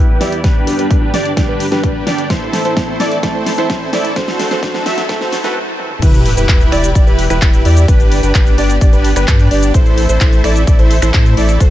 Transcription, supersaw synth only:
0.00 0.18 E4 medium
0.00 0.18 G4 medium
0.00 0.18 B4 medium
0.21 0.41 E4 medium
0.21 0.41 G4 medium
0.21 0.41 D5 medium
0.44 0.76 D4 medium
0.44 0.76 G4 medium
0.44 0.76 B4 loud
0.79 0.88 D4 medium
0.79 0.88 G4 medium
0.79 0.88 B4 medium
0.91 1.11 D4 medium
0.91 1.11 G4 medium
0.91 1.11 B4 medium
1.14 1.32 D4 loud
1.14 1.32 G4 medium
1.14 1.32 D5 loud
1.37 1.46 D4 medium
1.37 1.46 G4 medium
1.37 1.46 D5 loud
1.49 1.67 D4 medium
1.49 1.67 G4 medium
1.49 1.67 B4 medium
1.72 1.81 D4 loud
1.72 1.81 G4 medium
1.72 1.81 B4 loud
1.84 2.04 D4 medium
1.84 2.04 G4 medium
1.84 2.04 B4 medium
2.07 2.27 D4 medium
2.07 2.27 G4 medium
2.07 2.27 D5 medium
2.30 2.62 E4 medium
2.30 2.62 A4 medium
2.30 2.62 C5 loud
2.65 2.74 E4 medium
2.65 2.74 A4 medium
2.65 2.74 C5 medium
2.77 2.97 E4 medium
2.77 2.97 A4 medium
2.77 2.97 C5 medium
3.00 3.18 E4 loud
3.00 3.18 A4 medium
3.00 3.18 D5 loud
3.23 3.32 E4 medium
3.23 3.32 A4 medium
3.23 3.32 D5 loud
3.35 3.53 E4 medium
3.35 3.53 A4 medium
3.35 3.53 C5 medium
3.58 3.67 E4 loud
3.58 3.67 A4 medium
3.58 3.67 C5 loud
3.70 3.90 E4 medium
3.70 3.90 A4 medium
3.70 3.90 C5 medium
3.93 4.13 E4 medium
3.93 4.13 A4 medium
3.93 4.13 D5 medium
4.16 4.48 F#4 medium
4.16 4.48 A4 medium
4.16 4.48 C5 loud
4.51 4.60 F#4 medium
4.51 4.60 A4 medium
4.51 4.60 C5 medium
4.63 4.83 F#4 medium
4.63 4.83 A4 medium
4.63 4.83 C5 medium
4.86 5.04 F#4 loud
4.86 5.04 A4 medium
4.86 5.04 E5 loud
5.09 5.18 F#4 medium
5.09 5.18 A4 medium
5.09 5.18 E5 loud
5.21 5.39 F#4 medium
5.21 5.39 A4 medium
5.21 5.39 C5 medium
5.44 5.53 F#4 loud
5.44 5.53 A4 medium
5.44 5.53 B4 loud
6.02 6.34 E4 medium
6.02 6.34 G4 medium
6.02 6.34 B4 loud
6.37 6.46 E4 medium
6.37 6.46 G4 medium
6.37 6.46 B4 medium
6.49 6.69 E4 medium
6.49 6.69 G4 medium
6.49 6.69 B4 medium
6.72 6.90 E4 loud
6.72 6.90 G4 medium
6.72 6.90 D5 loud
6.95 7.04 E4 medium
6.95 7.04 G4 medium
6.95 7.04 D5 loud
7.07 7.25 E4 medium
7.07 7.25 G4 medium
7.07 7.25 B4 medium
7.30 7.39 E4 loud
7.30 7.39 G4 loud
7.30 7.39 B4 loud
7.42 7.62 E4 medium
7.42 7.62 G4 medium
7.42 7.62 B4 medium
7.65 7.86 E4 medium
7.65 7.86 G4 medium
7.65 7.86 D5 medium
7.88 8.20 D4 medium
7.88 8.20 G4 medium
7.88 8.20 B4 loud
8.23 8.32 D4 medium
8.23 8.32 G4 medium
8.23 8.32 B4 medium
8.35 8.55 G4 medium
8.58 8.76 D4 loud
8.58 8.76 G4 medium
8.58 8.76 D5 loud
8.81 8.90 D4 medium
8.81 8.90 G4 medium
8.81 8.90 D5 loud
8.93 9.11 D4 medium
8.93 9.11 G4 medium
8.93 9.11 B4 medium
9.16 9.25 D4 loud
9.16 9.25 G4 medium
9.16 9.25 B4 loud
9.28 9.48 D4 medium
9.28 9.48 G4 medium
9.28 9.48 B4 medium
9.51 9.72 D4 medium
9.51 9.72 G4 medium
9.51 9.72 D5 medium
9.74 10.07 E4 medium
9.74 10.07 A4 medium
9.74 10.06 C5 loud
10.09 10.18 E4 medium
10.09 10.18 A4 medium
10.09 10.18 C5 medium
10.21 10.41 E4 medium
10.21 10.41 A4 medium
10.21 10.41 C5 medium
10.44 10.62 E4 loud
10.44 10.62 A4 medium
10.44 10.62 D5 loud
10.67 10.76 E4 medium
10.67 10.76 A4 medium
10.67 10.76 D5 loud
10.79 10.97 E4 medium
10.79 10.97 A4 medium
10.79 10.97 C5 medium
11.02 11.11 E4 loud
11.02 11.11 A4 medium
11.02 11.11 C5 loud
11.14 11.34 E4 medium
11.37 11.58 E4 medium
11.37 11.58 A4 medium
11.37 11.58 D5 medium
11.61 11.70 F#4 medium
11.61 11.70 A4 medium
11.61 11.70 C5 loud

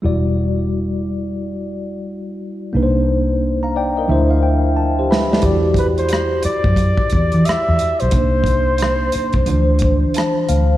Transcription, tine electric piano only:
0.02 2.68 G3 medium
0.02 2.69 E4 soft
0.02 2.69 F#4 soft
0.02 2.70 D5 medium
2.73 4.05 A#3 medium
2.73 4.06 D4 medium
2.73 4.06 D#4 medium
2.73 2.83 B4 medium
2.83 3.44 C5 medium
3.63 3.75 F5 soft
3.63 3.74 A#5 medium
3.76 3.95 D5 medium
3.76 3.96 G5 medium
3.97 4.29 A#4 soft
3.97 4.28 D#5 medium
4.08 5.40 F3 medium
4.08 5.40 D4 medium
4.08 5.41 E4 medium
4.08 4.76 C5 medium
4.08 4.28 E5 medium
4.30 4.41 F5 medium
4.43 4.73 G5 medium
4.77 5.07 A5 medium
4.99 5.10 G4 soft
4.99 5.09 C5 medium
5.11 5.30 B4 soft
5.11 5.30 E5 medium
5.11 5.41 B5 medium
5.32 5.64 A4 soft
5.32 5.45 D5 medium
5.42 8.09 E4 medium
5.42 8.09 F#4 medium
5.42 8.08 G4 medium
5.42 8.10 D5 medium
8.12 9.44 A#3 medium
8.12 9.45 D4 soft
8.12 9.45 D#4 soft
8.12 9.46 C5 medium
9.46 10.77 E3 medium
9.46 10.77 F3 medium
9.46 10.77 D4 medium
9.46 10.77 C5 medium
10.17 10.47 A5 medium
10.49 10.77 F5 medium

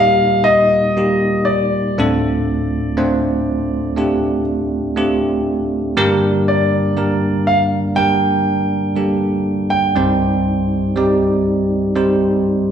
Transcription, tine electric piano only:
0.00 1.93 D#2 medium
0.00 1.92 A#2 medium
0.00 0.97 G3 medium
0.00 0.97 A#3 medium
0.00 0.97 D#4 medium
0.00 0.98 F4 medium
0.00 0.98 G4 medium
0.97 1.92 G3 medium
0.97 1.92 A#3 medium
0.97 1.92 D#4 medium
0.97 1.92 F4 medium
0.97 1.92 G4 medium
1.98 5.94 D2 medium
1.98 5.94 A2 medium
1.98 2.92 A3 medium
1.98 2.92 C4 medium
1.98 2.93 D4 medium
1.98 2.93 F4 medium
1.98 2.93 A4 loud
2.97 3.92 A3 medium
2.97 3.92 C4 medium
2.97 3.92 D4 medium
2.97 3.92 F4 medium
2.97 3.92 C5 loud
3.96 4.92 A3 medium
3.96 4.92 C4 medium
3.96 4.92 D4 medium
3.96 4.92 F4 medium
3.96 4.92 G4 loud
4.96 5.91 A3 medium
4.96 5.92 C4 medium
4.96 5.92 D4 medium
4.96 5.92 F4 medium
4.96 5.92 G4 loud
5.97 9.93 G2 medium
5.97 9.93 D3 medium
5.97 6.92 G3 loud
5.97 6.92 A#3 loud
5.97 6.92 D4 loud
5.97 6.92 G4 loud
5.97 6.92 A#4 loud
6.96 7.92 G3 medium
6.96 7.92 A#3 medium
6.96 7.92 D4 medium
6.96 7.92 G4 medium
6.96 7.92 A#4 medium
7.95 8.91 G3 medium
7.95 8.92 A#3 medium
7.95 8.92 D4 medium
7.95 8.92 G4 medium
7.95 8.92 A#4 medium
8.96 9.91 G3 medium
8.96 9.92 A#3 medium
8.96 9.92 D4 medium
8.96 9.92 G4 medium
8.96 9.92 A4 medium
9.95 12.71 C2 medium
9.95 12.71 G2 medium
9.95 10.91 G3 loud
9.95 10.91 C4 medium
9.95 10.91 D#4 medium
9.95 10.92 G4 medium
9.95 10.92 C5 loud
10.96 11.91 G3 medium
10.96 11.92 C4 medium
10.96 11.92 D#4 medium
10.96 11.92 G4 medium
10.96 11.92 D5 loud
11.96 12.71 G3 loud
11.96 12.71 C4 medium
11.96 12.71 D#4 medium
11.96 12.71 G4 medium
11.96 12.71 C5 medium

